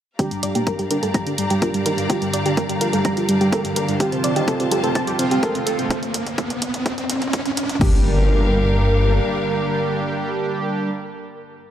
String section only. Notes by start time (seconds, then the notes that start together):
0.19 G4 D5 F5 A#5
4.00 C5 A5
7.81 G3 G4 A#4 F5